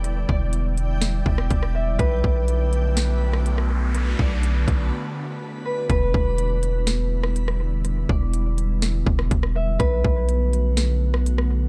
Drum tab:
HH |x---x-x-x---x---|x---x-x-x---x---|x---x-x---------|x---x-x-x---x---|
SD |--------o--r-r--|--------o--r-r--|----------------|--------o--r-r--|
BD |--o-------o-o---|o-o-------------|--o---o---------|o-o-------------|

HH |x---x-x-x---x---|x---x-x-x---x---|
SD |--------o--r-r--|--------o--r-r--|
BD |--o-------o-o---|o-o-------------|